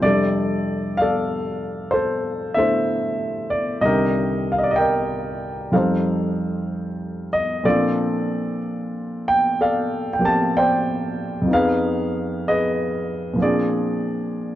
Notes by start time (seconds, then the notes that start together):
0.02 F2 C3 G3 D4 D5
0.06 A4
0.97 D5 F5
1.02 A4
1.91 A4 C5
2.54 D3 A3 E4 A4 E5
2.58 C5
3.50 D5
3.81 C2 C3 D3 D#3 D#5
3.85 G4 A#4
4.52 F5
4.58 D#5
4.63 D5
4.71 D#5
4.76 A#4 D#5 G5
5.72 F2 F3 G3 D#4 A4 F5
5.76 C5
7.33 D#5
7.64 A#2 F3 C4 D4 A4 D5
7.68 F4
9.28 G5
9.61 A4 D5 F5
10.13 G5
10.19 F3 A#3 C4 G4
10.25 A5
10.57 C5 D5 G5
11.42 F2
11.46 F3 B3
11.51 D#4 G#4 B4 F5
12.48 G#4 B4 D#5
13.33 A#2 F3
13.38 C4 D4 G#4 D5
13.43 F4